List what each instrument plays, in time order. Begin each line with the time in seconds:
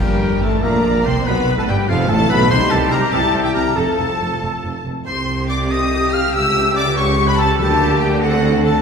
0.00 double bass section G1, tuba G1, cello section G2, french horn section G3, oboe G4, viola section A#4, violin section G5, flute G5
0.41 double bass section A1, tuba A1, cello section A2, french horn section A3, oboe A4, violin section A5, flute A5
0.62 double bass section A#1, tuba A#1, cello section A#2, french horn section A#3, oboe A#4, viola section D5, violin section A#5, flute A#5
1.04 double bass section C2, tuba C2, cello section C3, french horn section C4, oboe C5, violin section C6, flute C6
1.25 double bass section B1, tuba B1, cello section B2, french horn section B3, viola section B4, oboe B4, violin section B5, flute B5
1.57 cello section A2, french horn section A3, oboe A4, violin section A5, flute A5
1.67 double bass section G1, tuba G1, cello section G2, french horn section G3, oboe G4, violin section G5, flute G5
1.88 tuba F1, double bass section F1, cello section F2, french horn section F3, oboe F4, viola section A4, flute F5, violin section F5
2.09 tuba A1, double bass section A1, cello section A2, french horn section A3, oboe A4, violin section A5, flute A5
2.29 tuba B1, double bass section B1, cello section B2, french horn section B3, oboe B4, violin section B5, flute B5
2.50 double bass section C2, tuba C2, cello section C3, french horn section G3 D#4, viola section G4, oboe C5, violin section C6, flute C6
2.70 tuba C2, double bass section C2, cello section C3, oboe A4, violin section A5, flute A5
2.91 tuba C2, double bass section C2, cello section C3, oboe A#4, violin section A#5, flute A#5
3.12 tuba C2, double bass section C2, cello section C3, french horn section E4, oboe A4, violin section A5, flute A5
3.33 tuba C2, double bass section C2, cello section C3
3.44 oboe G4, flute G5, violin section G5
3.54 tuba C2, double bass section C2, cello section C3, oboe A#4, flute A#5, violin section A#5
3.76 tuba F1, double bass section F1, cello section F2, french horn section F3 F4, oboe A4, viola section A4, violin section A5, flute A5
3.98 tuba F1, double bass section F1, cello section F2
4.20 double bass section F1, tuba F1, cello section F2
4.41 tuba F1, double bass section F1, cello section F2
4.63 tuba F1, double bass section F1, cello section F2
4.85 double bass section F1, tuba F1, cello section F2
5.06 double bass section C2, tuba C2, cello section C3, french horn section A3 G4, viola section G4, oboe C5, violin section C6, flute C6
5.49 oboe D5, violin section D6, flute D6
5.70 oboe D#5, violin section D#6, flute D#6
6.13 oboe F5, violin section F6, flute F6
6.34 tuba C#2, double bass section C#2, cello section C#3, oboe E5, violin section E6, flute E6
6.76 oboe D5, flute D6, violin section D6
6.96 oboe C#5, flute C#6, violin section C#6
7.27 oboe B4, flute B5, violin section B5
7.38 oboe A4, violin section A5, flute A5
7.58 double bass section D2, tuba D2, timpani D3, cello section D3, french horn section A#3 G4, viola section G4, oboe A4, violin section A5, flute A5
8.00 oboe G4, violin section G5, flute G5
8.21 french horn section C4 A4, oboe F#4, viola section A4, flute F#5, violin section F#5
8.65 oboe A4, violin section A5, flute A5